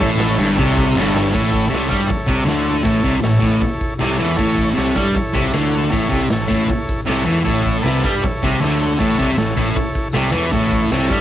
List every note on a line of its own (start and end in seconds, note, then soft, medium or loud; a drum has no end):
0.00 0.36 A1 medium
0.00 0.39 A2 loud
0.00 0.10 E4 loud
0.00 0.11 A4 loud
0.00 0.12 C#5 loud
0.00 kick medium
0.00 crash medium
0.17 0.50 E4 medium
0.17 0.51 A4 medium
0.17 0.51 C#5 loud
0.17 snare loud
0.17 tambourine loud
0.17 crash medium
0.38 0.56 G1 medium
0.38 0.57 G2 loud
0.38 crash medium
0.54 0.95 C3 loud
0.54 0.87 E4 medium
0.54 0.88 A4 medium
0.54 0.89 C#5 medium
0.59 0.94 C2 loud
0.59 kick medium
0.59 crash medium
0.77 kick loud
0.77 crash medium
0.95 1.31 G1 loud
0.95 1.33 G2 loud
0.95 1.28 E4 medium
0.95 1.28 A4 medium
0.95 1.29 C#5 medium
0.95 snare medium
0.95 tambourine loud
1.16 snare loud
1.32 1.70 A1 medium
1.32 1.69 A2 loud
1.32 1.65 E4 loud
1.32 1.66 A4 medium
1.32 1.66 C#5 loud
1.32 kick loud
1.32 crash loud
1.32 tambourine medium
1.54 kick medium
1.68 1.89 C3 medium
1.68 2.02 E4 medium
1.68 2.01 A4 medium
1.68 2.02 C#5 loud
1.72 1.89 C2 loud
1.72 snare loud
1.72 open hi-hat medium
1.72 tambourine medium
1.89 2.09 G2 medium
1.89 2.08 G3 loud
1.89 kick medium
1.93 tambourine medium
2.05 2.39 E4 medium
2.05 2.40 A4 medium
2.05 2.40 C#5 medium
2.05 muted distorted electric guitar stroke medium
2.10 muted fingered electric bass stroke soft
2.10 kick loud
2.10 open hi-hat medium
2.10 tambourine soft
2.27 2.46 C2 medium
2.27 2.45 C3 loud
2.27 kick medium
2.27 tambourine medium
2.42 2.84 D3 loud
2.42 2.77 E4 medium
2.42 2.78 A4 medium
2.42 2.77 C#5 medium
2.47 2.83 D2 medium
2.47 snare loud
2.47 open hi-hat soft
2.47 tambourine medium
2.83 3.03 A1 medium
2.83 3.04 A2 loud
2.83 3.16 E4 loud
2.83 3.16 A4 loud
2.83 3.17 C#5 loud
2.83 kick loud
2.83 open hi-hat medium
2.83 tambourine medium
3.04 3.22 C2 medium
3.04 3.21 C3 loud
3.04 kick medium
3.21 3.42 A1 medium
3.21 3.38 A2 medium
3.21 3.55 E4 medium
3.21 3.56 A4 medium
3.21 3.56 C#5 loud
3.21 snare loud
3.21 open hi-hat medium
3.21 tambourine medium
3.40 3.61 A1 loud
3.40 3.60 A2 loud
3.40 kick medium
3.40 tambourine medium
3.61 3.94 E4 medium
3.61 3.94 A4 medium
3.61 3.94 C#5 medium
3.61 kick loud
3.61 open hi-hat soft
3.61 tambourine soft
3.81 kick medium
3.99 4.19 C2 medium
3.99 4.18 C3 medium
3.99 4.32 E4 medium
3.99 4.32 A4 medium
3.99 4.33 C#5 medium
3.99 snare loud
3.99 open hi-hat medium
3.99 tambourine medium
4.18 4.38 E2 medium
4.18 4.37 E3 loud
4.18 tambourine medium
4.36 4.75 A1 loud
4.36 4.74 A2 loud
4.36 4.69 E4 loud
4.36 4.70 A4 loud
4.36 4.69 C#5 loud
4.36 kick loud
4.36 open hi-hat medium
4.36 tambourine medium
4.58 kick medium
4.68 snare soft
4.74 4.96 C2 medium
4.74 4.94 C3 medium
4.74 5.08 E4 medium
4.74 5.09 A4 medium
4.74 5.09 C#5 loud
4.74 snare loud
4.74 open hi-hat medium
4.74 tambourine medium
4.95 5.14 G2 medium
4.95 5.14 G3 loud
4.95 kick medium
4.95 tambourine medium
5.13 5.46 E4 medium
5.13 5.47 A4 medium
5.13 5.48 C#5 medium
5.13 muted distorted electric guitar stroke medium
5.13 muted fingered electric bass stroke soft
5.13 kick loud
5.13 open hi-hat medium
5.13 tambourine soft
5.33 5.53 C2 loud
5.33 5.53 C3 loud
5.33 kick medium
5.51 5.90 D2 loud
5.51 5.91 D3 loud
5.51 5.85 E4 medium
5.51 5.85 A4 medium
5.51 5.85 C#5 medium
5.51 snare loud
5.51 open hi-hat medium
5.51 tambourine medium
5.73 tambourine medium
5.90 6.11 A1 medium
5.90 6.09 A2 loud
5.90 6.23 E4 loud
5.90 6.23 A4 loud
5.90 6.23 C#5 loud
5.90 kick loud
5.90 open hi-hat medium
5.90 tambourine medium
6.09 6.30 C2 medium
6.09 6.29 C3 medium
6.09 kick medium
6.09 tambourine soft
6.22 snare soft
6.29 6.50 A1 medium
6.29 6.46 A2 medium
6.29 6.63 E4 medium
6.29 6.64 A4 medium
6.29 6.64 C#5 loud
6.29 snare loud
6.29 open hi-hat medium
6.29 tambourine loud
6.47 6.68 A1 medium
6.47 6.68 A2 loud
6.47 kick medium
6.47 tambourine medium
6.68 7.01 E4 medium
6.68 7.01 A4 medium
6.68 7.01 C#5 medium
6.68 kick loud
6.68 open hi-hat medium
6.68 tambourine soft
6.89 kick medium
6.89 tambourine medium
7.06 7.26 C2 medium
7.06 7.25 C3 loud
7.06 7.39 E4 medium
7.06 7.40 A4 medium
7.06 7.40 C#5 medium
7.06 snare loud
7.06 open hi-hat medium
7.06 tambourine medium
7.26 7.45 E2 medium
7.26 7.44 E3 loud
7.26 tambourine medium
7.43 7.83 A1 medium
7.43 7.83 A2 loud
7.43 7.77 E4 loud
7.43 7.78 A4 loud
7.43 7.78 C#5 loud
7.43 kick loud
7.43 open hi-hat medium
7.43 tambourine medium
7.66 kick medium
7.81 8.02 C2 loud
7.81 8.03 C3 medium
7.81 8.15 E4 loud
7.81 8.15 A4 medium
7.81 8.16 B4 loud
7.81 open hi-hat medium
7.81 tambourine loud
7.86 snare loud
8.03 8.22 G2 medium
8.03 8.22 G3 loud
8.03 kick medium
8.03 tambourine medium
8.21 8.54 E4 medium
8.21 8.55 A4 medium
8.21 8.55 C#5 medium
8.21 muted distorted electric guitar stroke medium
8.21 muted fingered electric bass stroke soft
8.21 kick loud
8.21 open hi-hat medium
8.21 tambourine soft
8.43 8.59 C2 medium
8.43 8.61 C3 loud
8.43 kick loud
8.59 8.97 D2 medium
8.59 8.99 D3 medium
8.59 8.92 E4 medium
8.59 8.93 A4 medium
8.59 8.93 C#5 medium
8.59 open hi-hat medium
8.59 tambourine medium
8.64 snare loud
8.78 tambourine medium
8.97 9.18 A1 medium
8.97 9.19 A2 medium
8.97 9.31 E4 loud
8.97 9.32 A4 loud
8.97 9.32 C#5 loud
8.97 kick loud
8.97 open hi-hat medium
8.97 tambourine medium
9.19 9.37 C2 medium
9.19 9.38 C3 loud
9.19 kick medium
9.35 9.56 A1 medium
9.35 9.54 A2 medium
9.35 9.69 E4 medium
9.35 9.70 A4 medium
9.35 9.70 C#5 loud
9.35 snare loud
9.35 open hi-hat medium
9.35 tambourine medium
9.57 9.75 A1 medium
9.57 9.76 A2 loud
9.57 kick medium
9.57 tambourine medium
9.75 10.08 E4 medium
9.75 10.08 A4 medium
9.75 10.08 C#5 medium
9.75 kick loud
9.75 open hi-hat medium
9.75 tambourine soft
9.95 kick medium
9.95 tambourine medium
10.12 10.33 C2 medium
10.12 10.31 C3 medium
10.12 10.46 E4 medium
10.12 10.46 A4 medium
10.12 10.47 C#5 medium
10.12 snare loud
10.12 open hi-hat medium
10.12 tambourine medium
10.32 10.52 E2 medium
10.32 10.52 E3 medium
10.32 tambourine medium
10.51 10.89 A1 loud
10.51 10.91 A2 loud
10.51 10.85 E4 loud
10.51 10.84 A4 loud
10.51 10.85 C#5 loud
10.51 kick loud
10.51 open hi-hat medium
10.51 tambourine medium
10.72 kick medium
10.91 11.10 C2 loud
10.91 11.11 C3 medium
10.91 11.21 E4 medium
10.91 11.21 A4 medium
10.91 11.21 C#5 loud
10.91 snare loud
10.91 open hi-hat medium
10.91 tambourine loud
11.08 11.21 G2 medium
11.08 11.21 G3 loud
11.08 kick medium
11.08 tambourine medium